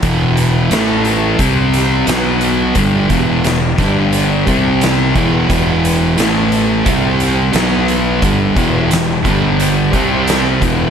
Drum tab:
HH |xxxxxxxx|xxxxxxxx|xxxxxxxx|xxxxxxxx|
SD |--o--oo-|--oo--o-|--o---o-|--o---o-|
BD |o---o---|oo-o-o-o|o---o---|oo-o-o-o|